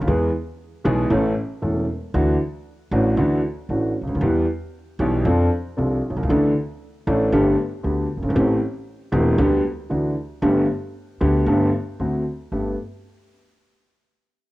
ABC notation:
X:1
M:4/4
L:1/16
Q:1/4=116
K:G
V:1 name="Grand piano" clef=bass
[E,,E,^G,B,^G]2 z4 [B,,,B,,E,G,B,G]2 [A,,,A,,E,A,^CA]2 z2 [E,,,E,,E,A,CA]2 z2 | [D,,D,E,A,DF]2 z4 [A,,,A,,E,A,DF]2 [D,,D,E,A,DF]2 z2 [A,,,A,,E,A,DF]2 z/2 ^C,,/2 D,,/2 _E,,/2 | [E,,E,G,B,G]2 z4 [B,,,B,,E,G,B,G]2 [=F,,=F,CDA]2 z2 [C,,C,F,CDA]2 z/2 B,,,/2 C,,/2 ^C,,/2 | [D,,D,E,A,DA]2 z4 [A,,,A,,E,A,DA]2 [G,,,G,,D,A,B,G]2 z2 [D,,D,A,B,G]2 z/2 F,,,/2 G,,,/2 _A,,,/2 |
[A,,,A,,E,A,CG]2 z4 [E,,,E,,E,A,CG]2 [D,,D,G,B,G]2 z2 [D,,D,E,A,DF]2 z2 | [G,,,G,,D,A,B,G]2 z4 [D,,D,A,B,G]2 [G,,,G,,D,A,B,G]2 z2 [D,,D,A,CF]2 z2 | [G,,A,B,G]2 z12 z2 |]
V:2 name="Upright bass" clef=bass
E,,3/2 z4 z/2 B,,,3/2 z/2 A,,,3/2 z2 z/2 E,,,3/2 z2 z/2 | D,,3/2 z4 z/2 A,,,3/2 z/2 D,,3/2 z2 z/2 A,,,3/2 z ^C,,/2 D,,/2 _E,,/2 | E,,3/2 z4 z/2 B,,,3/2 z/2 =F,,3/2 z2 z/2 C,,3/2 z B,,,/2 C,,/2 ^C,,/2 | D,,3/2 z4 z/2 A,,,3/2 z/2 G,,,3/2 z2 z/2 D,,3/2 z F,,,/2 G,,,/2 _A,,,/2 |
A,,,3/2 z4 z/2 E,,,3/2 z/2 D,,3/2 z2 z/2 D,,3/2 z2 z/2 | G,,,3/2 z4 z/2 D,,3/2 z/2 G,,,3/2 z2 z/2 D,,3/2 z2 z/2 | G,,,2 z12 z2 |]